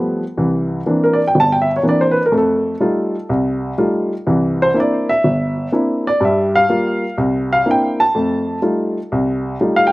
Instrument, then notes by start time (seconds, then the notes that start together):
grand piano
Already playing: F3 G3 A3 B3
0.37 C2 E3
0.86 E3 A#3 C4 D4
1.04 A#4
1.13 D5
1.27 G5
1.35 G1
1.40 A5
1.52 G5
1.62 E5
1.76 C#5
1.83 E3 A#3 C4 D4
1.89 D5
2.01 C5
2.11 B4
2.26 A#4
2.32 F2 A3
2.38 A4
2.80 G3 A3 D#4 F4
3.29 C2
3.78 G3 A3 D#4 F4
4.27 C2 E3
4.62 C5
4.74 A#3 C4 D4 E4
4.80 D5
5.09 E5
5.24 G1
5.72 A#3 C4 D4 E4
6.07 D5
6.21 G2 G3
6.25 E5
6.56 F5
6.70 G3 A#3 F4
7.18 C2
7.53 F5
7.66 A#3 C4 D4 E4
7.71 G5
8.00 A5
8.15 F2 A3
8.62 G3 A3 D#4 F4
9.12 C2
9.61 G3 A3 D#4 F4
9.76 F5
9.87 G5